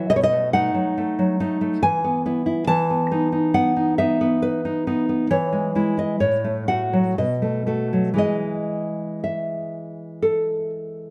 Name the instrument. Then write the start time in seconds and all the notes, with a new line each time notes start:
nylon-string guitar
Already playing: F#3
0.10 B2 D#5
0.16 C#5
0.23 D#5
0.32 A3
0.53 A3 D#4 F#5
0.74 F#3
0.98 A3
1.19 F#3
1.40 A3 D#4
1.61 A3
1.83 E3 G#5
2.04 B3
2.26 B3 E4
2.46 E4
2.67 E3 A5
2.90 B3
3.11 B3 D#4
3.32 D#4
3.54 B3 F#5
3.77 D#4
3.98 B3 D#4 E5
4.21 B3
4.42 B4
4.65 D#4
4.87 B3 D#4
5.09 B3
5.30 E3 C#5
5.53 G#3
5.75 G#3 E4
5.97 E4 D#5
6.20 A2 C#5
6.44 A3
6.68 A3 F#4 F#5
6.93 F#3
7.18 B2 D#5
7.42 A3
7.67 A3 F#4
7.93 F#3
8.14 E3 G#3 G#4
8.18 D#5
9.24 E5
10.22 A4